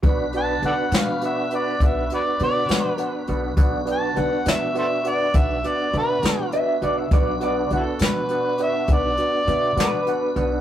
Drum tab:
HH |xxxxxxxxxxxx|xxxxxxxxxxxx|xxxxxxxxxxxx|
SD |---o-----o--|---o-----o--|---o-----o--|
BD |o-----o-----|o-----o-----|o-----o-----|